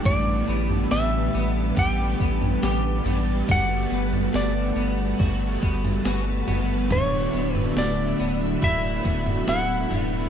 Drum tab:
TB |x-x-x-x---x-x-x-|x-x-x-x---x-x-x-|x-x-x-x---x-x-x-|
SD |----o-------o---|----o-------o---|----o-------o---|
FT |o--o----o--o--o-|o--o----o--o--o-|o--o----o--o--o-|
BD |o-------o-o-----|o-------o-o-----|o-------o-o-----|